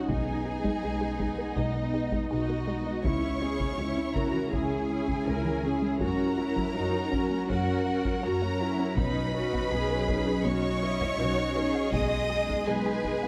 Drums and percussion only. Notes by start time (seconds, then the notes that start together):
0.09 taiko
0.65 taiko
1.20 taiko
1.57 taiko
2.12 taiko
3.05 taiko
3.60 taiko
4.16 taiko
4.53 taiko
5.08 taiko
6.01 taiko
6.57 taiko
7.13 taiko
7.50 taiko
8.05 taiko
8.98 taiko
9.53 taiko
10.09 taiko
10.46 taiko
11.01 taiko
11.94 taiko
12.49 taiko
13.05 taiko